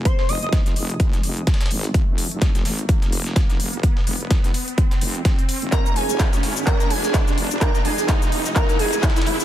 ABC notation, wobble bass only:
X:1
M:4/4
L:1/16
Q:"Swing 16ths" 1/4=127
K:Fm
V:1 name="Wobble bass" clef=bass
z2 F,,,2 F,,,2 F,,,4 F,,,2 z2 A,,,2 | F,,, F,,,3 F,,,2 A,,,3 F,,,4 F,,,3 | z2 F,,,2 F,,,2 z4 F,,,3 z2 F,,, | F,,, F,,,3 F,,,2 A,,,3 F,,,4 F,,,3 |
z2 F,,,2 F,,,2 F,,,4 F,,,2 z2 A,,,2 |]